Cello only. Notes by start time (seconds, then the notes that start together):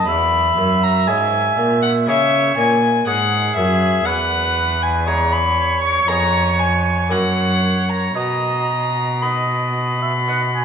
0.07 E2
0.58 F#2
1.08 G#2
1.58 A#2
2.07 C#3
2.57 A#2
3.07 G#2
3.57 F#2
4.06 E2
6.07 F2
7.10 F#2
8.16 B2